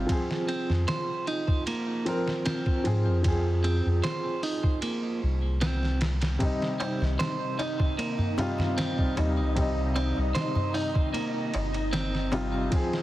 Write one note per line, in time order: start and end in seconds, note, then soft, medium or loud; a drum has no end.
0.00 0.11 C3 medium
0.00 0.11 G3 medium
0.00 0.10 F4 loud
0.07 2.01 F3 medium
0.07 2.02 C4 medium
0.07 kick loud
0.07 ride medium
0.12 2.03 G#4 loud
0.31 snare soft
0.48 0.72 C4 medium
0.48 ride medium
0.69 0.86 F2 medium
0.69 snare soft
0.88 1.25 C5 loud
0.88 snare loud
0.88 ride medium
1.27 1.63 D#4 medium
1.27 ride medium
1.48 kick medium
1.67 2.05 A#3 medium
1.67 ride medium
2.05 2.42 F3 medium
2.05 2.42 C4 medium
2.05 2.43 A#4 loud
2.05 ride medium
2.28 snare medium
2.46 2.83 C4 medium
2.46 snare loud
2.46 ride medium
2.66 kick medium
2.84 3.08 G#2 medium
2.84 3.20 F3 medium
2.84 3.20 C4 medium
2.84 3.21 G#4 medium
2.84 ride medium
3.06 3.81 F2 medium
3.23 5.95 F3 medium
3.23 5.97 C4 medium
3.23 kick loud
3.23 ride medium
3.28 5.98 G#4 medium
3.64 3.87 C4 medium
3.64 ride medium
3.85 4.02 F2 loud
4.04 4.41 C5 medium
4.04 snare loud
4.04 ride medium
4.43 4.79 D#4 loud
4.43 open hi-hat medium
4.64 kick medium
4.82 5.20 A#3 medium
4.82 ride medium
5.23 6.37 C2 medium
5.61 5.99 C4 medium
5.61 snare loud
5.61 ride medium
5.83 snare soft
6.01 snare loud
6.01 ride medium
6.22 snare medium
6.22 ride medium
6.39 8.32 C3 medium
6.39 8.34 G3 medium
6.39 13.03 D#4 medium
6.39 13.03 D#5 medium
6.39 kick loud
6.39 ride medium
6.39 darbuka tek soft
6.44 8.35 D#4 loud
6.62 snare soft
6.80 7.03 C4 medium
6.80 ride medium
6.80 darbuka tek medium
7.01 7.17 C2 loud
7.01 snare soft
7.01 darbuka tek soft
7.19 7.57 C5 medium
7.19 snare loud
7.19 ride medium
7.19 darbuka tek soft
7.59 7.95 D#4 medium
7.59 ride medium
7.59 darbuka tek medium
7.80 kick medium
7.80 darbuka tek soft
7.98 8.36 A#3 medium
7.98 ride medium
7.98 darbuka tek soft
8.18 darbuka dum medium
8.38 8.74 C3 medium
8.38 8.74 G3 medium
8.38 8.75 F4 loud
8.38 ride medium
8.38 darbuka tek medium
8.38 darbuka dum medium
8.58 snare medium
8.58 darbuka tek soft
8.58 darbuka dum medium
8.78 9.15 C4 loud
8.78 snare loud
8.78 ride medium
8.78 darbuka tek soft
8.98 kick medium
9.16 9.39 D#2 medium
9.16 9.51 C3 medium
9.16 9.52 G3 medium
9.16 9.53 D#4 medium
9.16 ride medium
9.16 darbuka tek medium
9.37 10.13 C2 loud
9.37 darbuka tek soft
9.55 12.27 C3 medium
9.55 12.28 G3 medium
9.55 kick loud
9.55 ride medium
9.55 darbuka tek medium
9.60 12.30 D#4 loud
9.96 10.19 C4 medium
9.96 ride medium
9.96 darbuka tek medium
10.17 10.33 C2 medium
10.17 darbuka tek soft
10.35 10.72 C5 medium
10.35 snare loud
10.35 ride medium
10.35 darbuka tek soft
10.55 darbuka dum medium
10.74 11.10 D#4 loud
10.74 open hi-hat medium
10.74 darbuka tek medium
10.95 kick medium
10.95 darbuka tek soft
11.14 11.51 A#3 medium
11.14 ride medium
11.14 darbuka tek soft
11.54 12.69 G1 medium
11.54 ride medium
11.54 darbuka tek medium
11.74 ride soft
11.74 darbuka tek soft
11.93 12.30 C4 medium
11.93 snare loud
11.93 ride medium
11.93 darbuka tek medium
12.15 snare soft
12.32 12.67 C3 medium
12.32 12.68 G3 medium
12.32 12.68 F4 loud
12.32 ride medium
12.32 darbuka tek medium
12.54 darbuka tek soft
12.70 13.03 F3 medium
12.70 13.03 C4 medium
12.70 kick loud
12.70 ride medium
12.70 darbuka tek soft
12.76 13.03 G#4 loud
12.93 snare soft